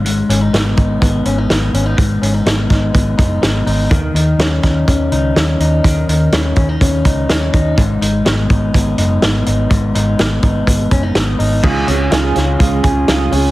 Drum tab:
CC |--------|--------|--------|--------|
HH |xxxxxxxx|xxxxxxxo|xxxxxxxx|xxxxxxxx|
SD |--o---o-|--oo--o-|--oo--o-|--o---o-|
BD |---oo---|o--ooo--|o--oo---|o--ooo-o|

CC |--------|--------|x-------|
HH |xxxxxxxx|xxxxxxxo|-xxxxxxo|
SD |--o---o-|--o---o-|--oo--o-|
BD |o--oo---|o--ooo--|o---oo--|